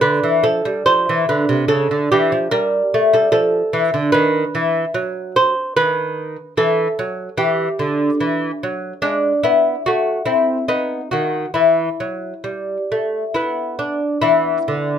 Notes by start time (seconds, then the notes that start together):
0.01 D3 B4
0.23 E3
0.43 F3 A4
0.65 G3
0.86 F3 C5
1.09 E3
1.29 D3 B4
1.49 C3
1.68 C#3 A4
1.91 D3
2.12 E3 G4
2.32 F3
2.51 G3 A#4
2.94 A3
3.13 G3 A4
3.32 F3 A4
3.73 E3
3.94 D3
4.12 D#3 B4
4.55 E3
4.94 F#3
5.36 C5
5.76 D#3 B4
6.57 E3 A4
6.99 F#3
7.38 E3 G4
7.79 D3
8.20 E3
8.63 F#3
9.02 G#3 D4
9.43 B3 E4
9.86 A3 F#4
10.26 C4 E4
10.68 B3 D#4
11.11 D#3 F#4
11.54 E3 E4
12.00 F#3
12.44 G3
12.92 A3
13.34 B3 E4
13.79 D4
14.21 E3 B3 E4
14.68 D3